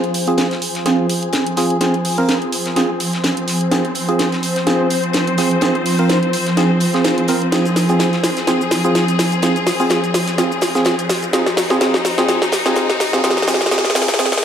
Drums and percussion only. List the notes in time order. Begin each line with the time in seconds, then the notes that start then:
0.04 closed hi-hat
0.14 closed hi-hat, open hi-hat
0.27 closed hi-hat
0.38 snare, closed hi-hat
0.51 snare, closed hi-hat
0.62 closed hi-hat, open hi-hat
0.75 snare, closed hi-hat
0.86 snare, closed hi-hat
1.09 closed hi-hat, open hi-hat
1.23 closed hi-hat
1.33 snare, closed hi-hat
1.47 closed hi-hat
1.57 snare, closed hi-hat, open hi-hat
1.70 closed hi-hat
1.81 snare, closed hi-hat
1.94 closed hi-hat
2.05 open hi-hat
2.18 closed hi-hat
2.29 snare, closed hi-hat
2.42 closed hi-hat
2.52 closed hi-hat, open hi-hat
2.65 snare, closed hi-hat
2.76 snare, closed hi-hat
3.00 closed hi-hat, open hi-hat
3.13 snare, closed hi-hat
3.24 snare, closed hi-hat
3.37 closed hi-hat
3.48 snare, closed hi-hat, open hi-hat
3.61 closed hi-hat
3.71 snare, closed hi-hat
3.85 closed hi-hat
3.95 closed hi-hat, open hi-hat
4.09 closed hi-hat
4.19 snare, closed hi-hat
4.32 snare, closed hi-hat
4.43 closed hi-hat, open hi-hat
4.56 snare, closed hi-hat
4.67 snare, closed hi-hat
4.90 closed hi-hat, open hi-hat
5.04 closed hi-hat
5.13 snare, closed hi-hat
5.27 closed hi-hat
5.38 snare, closed hi-hat, open hi-hat
5.51 closed hi-hat
5.61 snare, closed hi-hat
5.75 closed hi-hat
5.86 open hi-hat
5.99 closed hi-hat
6.09 snare, closed hi-hat
6.23 closed hi-hat
6.33 closed hi-hat, open hi-hat
6.46 snare, closed hi-hat
6.57 snare, closed hi-hat
6.80 closed hi-hat, open hi-hat
6.94 snare, closed hi-hat
7.04 snare, closed hi-hat
7.18 closed hi-hat
7.28 snare, closed hi-hat, open hi-hat
7.42 closed hi-hat
7.52 snare, closed hi-hat, shaker
7.65 closed hi-hat, shaker
7.76 snare, closed hi-hat, open hi-hat, shaker
7.89 closed hi-hat, shaker
7.99 snare, closed hi-hat, shaker
8.12 snare, closed hi-hat
8.24 snare, closed hi-hat, open hi-hat, shaker
8.37 snare, closed hi-hat, shaker
8.47 snare, closed hi-hat, shaker
8.61 shaker
8.71 snare, closed hi-hat, open hi-hat, shaker
8.84 closed hi-hat, shaker
8.95 snare, closed hi-hat, shaker
9.08 closed hi-hat, shaker
9.19 snare, closed hi-hat, open hi-hat, shaker
9.32 closed hi-hat, shaker
9.42 snare, closed hi-hat, shaker
9.56 closed hi-hat, shaker
9.67 snare, open hi-hat, shaker
9.80 closed hi-hat, shaker
9.90 snare, closed hi-hat, shaker
10.04 closed hi-hat, shaker
10.14 snare, closed hi-hat, open hi-hat, shaker
10.27 snare, closed hi-hat, shaker
10.38 snare, closed hi-hat, shaker
10.52 shaker
10.61 snare, closed hi-hat, open hi-hat, shaker
10.75 snare, closed hi-hat, shaker
10.85 snare, closed hi-hat, shaker
10.99 closed hi-hat, shaker
11.09 snare, closed hi-hat, open hi-hat, shaker
11.23 closed hi-hat, shaker
11.33 snare, closed hi-hat, shaker
11.46 snare, closed hi-hat, shaker
11.57 snare, closed hi-hat, open hi-hat, shaker
11.70 snare, closed hi-hat, shaker
11.81 snare, closed hi-hat, shaker
11.94 snare, closed hi-hat
12.05 snare, closed hi-hat, open hi-hat, shaker
12.18 snare, closed hi-hat, shaker
12.29 snare, closed hi-hat, shaker
12.42 snare, shaker
12.52 snare, closed hi-hat, open hi-hat, shaker
12.65 snare, closed hi-hat, shaker
12.76 snare, closed hi-hat, shaker
12.89 snare, closed hi-hat, shaker
13.00 snare, closed hi-hat, open hi-hat, shaker
13.13 snare, shaker
13.24 snare, closed hi-hat, shaker
13.30 snare
13.37 snare, closed hi-hat, shaker
13.42 snare
13.48 snare, open hi-hat, shaker
13.54 snare
13.61 snare, closed hi-hat, shaker
13.66 snare
13.71 snare, closed hi-hat, shaker
13.78 snare
13.85 snare, closed hi-hat, shaker
13.90 snare
13.95 snare, closed hi-hat, open hi-hat, shaker
14.02 snare
14.08 snare, closed hi-hat, shaker
14.14 snare
14.19 snare, closed hi-hat, shaker
14.26 snare
14.32 snare, closed hi-hat, shaker
14.38 snare